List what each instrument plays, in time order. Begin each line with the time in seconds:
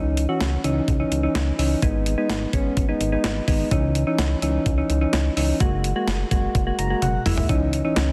Already playing: analog synth bass C#2, synth keys E3 C#4 D#4
0.17 closed hi-hat
0.29 synth keys E3 C#4 F#4
0.41 analog synth bass C#2, snare, closed hi-hat
0.64 analog synth bass C#2, synth keys E3 C#4 D#4, closed hi-hat
0.88 analog synth bass C#2, kick, closed hi-hat
1.00 synth keys E3 C#4 D#4
1.12 analog synth bass C#2, closed hi-hat
1.23 synth keys E3 C#4 D#4
1.35 analog synth bass C#2, snare, closed hi-hat
1.59 analog synth bass C#2, synth keys E3 C#4 D#4, open hi-hat
1.82 analog synth bass G#1, synth keys G#3 B3 D#4, kick, closed hi-hat
2.06 closed hi-hat
2.18 synth keys G#3 B3 D#4
2.30 analog synth bass G#1, snare, closed hi-hat
2.53 analog synth bass G#1, synth keys G#3 B3 C#4, kick, closed hi-hat
2.77 analog synth bass G#1, kick, closed hi-hat
2.89 synth keys G#3 B3 D#4
3.01 analog synth bass G#1, closed hi-hat
3.12 synth keys G#3 B3 D#4
3.24 analog synth bass G#1, snare, closed hi-hat
3.48 analog synth bass G#1, synth keys G#3 B3 D#4, kick, open hi-hat
3.71 analog synth bass C#2, synth keys E3 C#4 D#4, kick, closed hi-hat
3.95 closed hi-hat
4.07 synth keys E3 C#4 D#4
4.18 analog synth bass C#2, snare, closed hi-hat
4.42 analog synth bass C#2, synth keys E3 C#4 D#4, closed hi-hat
4.66 analog synth bass C#2, kick, closed hi-hat
4.78 synth keys E3 C#4 D#4
4.90 analog synth bass C#2, closed hi-hat
5.01 synth keys E3 C#4 D#4
5.13 analog synth bass C#2, snare, closed hi-hat
5.37 analog synth bass C#2, synth keys E3 C#4 D#4, open hi-hat
5.60 analog synth bass F#1, synth keys G#3 A#3 F#4, kick, closed hi-hat
5.84 closed hi-hat
5.96 synth keys G#3 A#3 F#4
6.08 analog synth bass F#1, snare, closed hi-hat
6.31 analog synth bass F#1, synth keys G#3 A#3 F#4, kick, closed hi-hat
6.55 analog synth bass F#1, kick, closed hi-hat
6.67 synth keys G#3 A#3 F#4
6.78 analog synth bass F#1, synth keys A#5, closed hi-hat
6.90 synth keys G#3 A#3 F#4
7.02 analog synth bass F#1, synth keys F#5, closed hi-hat, high tom
7.26 analog synth bass F#1, synth keys G#3 A#3 E4 E5, mid tom, open hi-hat
7.38 floor tom
7.49 analog synth bass C#2, synth keys E3 C#4 D#4, kick, closed hi-hat
7.73 closed hi-hat
7.85 synth keys E3 C#4 D#4
7.96 analog synth bass C#2, snare, closed hi-hat